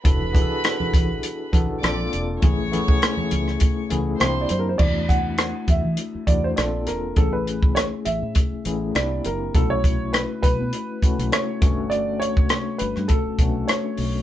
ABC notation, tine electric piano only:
X:1
M:4/4
L:1/8
Q:"Swing 16ths" 1/4=101
K:Emix
V:1 name="Tine electric piano"
[B,DEFA] [B,DEFGA]3 z [B,DEFA] [_B,=CD=FA]2 | [A,B,CEG] [A,B,CEG]3 z [A,B,CEG] [_B,=CDE=G]2 | [G,A,B,DEF]3 z2 [A,B,DEF] [_B,=CD=FA]2 | [A,B,CEG]3 z2 [A,B,CEG] [_B,=CDE=G]2 |
[A,B,CEF]3 z2 [A,B,CEF]2 [A,B,CDF]- | [A,B,CDF]2 z3 [A,B,CDF]2 z |]